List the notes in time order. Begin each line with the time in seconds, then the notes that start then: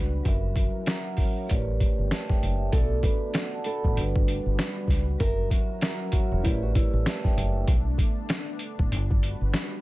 Already playing: C#2 G3 D4 F#4 B4
0.23 F#1 F#3 C#4 E4 F#4 A#4 E5, kick, closed hi-hat
0.56 kick, closed hi-hat
0.86 F#5 A#5, snare, closed hi-hat
1.03 F#5
1.17 C#5 E5, kick, open hi-hat
1.37 A#4 C#5
1.47 A1 A3 D4 G4 B4 D5, kick, closed hi-hat
1.80 kick, closed hi-hat
1.98 G1
2.11 A5, snare, closed hi-hat
2.28 E5 G5, kick, snare
2.42 F#1, closed hi-hat
2.57 E5
2.72 B1 A3 B3 D4 F#4 A4 D5, kick, closed hi-hat
3.03 B4, kick, closed hi-hat
3.34 snare, closed hi-hat
3.38 D5 F#5
3.54 F#5 A5
3.64 A4 B5, closed hi-hat
3.83 A1 D5 F#5, kick
3.95 G1 G3 D4 F#4 B4, closed hi-hat
4.16 kick
4.28 closed hi-hat
4.46 G1
4.59 snare, closed hi-hat
4.88 C#2, kick, snare, closed hi-hat
5.19 F#1 F#3 C#4 E4 F#4 A#4 E5, kick, closed hi-hat
5.51 F#4, kick, closed hi-hat
5.81 F#5 A#5, snare, closed hi-hat
5.98 F#5
6.12 F#4 C#5 E5, kick, closed hi-hat
6.31 E1 A#4 C#5
6.42 G3 A3 D4 E4 G4 B4 D5, kick, closed hi-hat
6.46 A1
6.62 F#4
6.75 E4, kick, closed hi-hat
6.93 A1
7.06 A5, snare, closed hi-hat
7.23 E5 G5, kick, snare
7.37 F#1, closed hi-hat
7.53 E5
7.67 B1 B3, kick, closed hi-hat
7.98 kick, closed hi-hat
8.29 snare, closed hi-hat
8.59 closed hi-hat
8.79 A1, kick
8.92 G1 G3 F#4 B4, closed hi-hat
9.11 kick
9.23 closed hi-hat
9.41 G1
9.53 snare, closed hi-hat